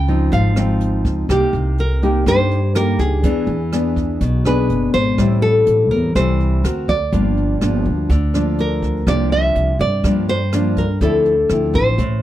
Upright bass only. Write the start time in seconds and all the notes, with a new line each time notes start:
Already playing: C#2
0.32 G#1
1.05 C#2
1.29 C2
1.53 C2
2.26 G2
2.99 C#2
3.23 E2
3.47 E2
4.21 B1
4.70 F#1
4.94 G#1
5.18 A1
5.67 A1
5.91 E2
6.15 C2
6.64 D2
7.13 G1
7.62 G1
7.85 D2
8.10 D2
9.07 C2
9.55 C2
9.79 G2
10.04 G2
11.01 D2
11.49 D2
11.73 A1
11.98 A1